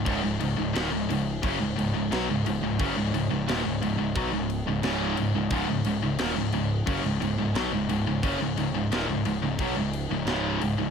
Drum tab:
CC |xxxxxxxx|xxxxxxxx|xxxxxxxx|xxxxxxxx|
SD |--o---o-|--o---o-|--o---o-|--o---o-|
BD |o---o---|o---o---|o---o---|o---o---|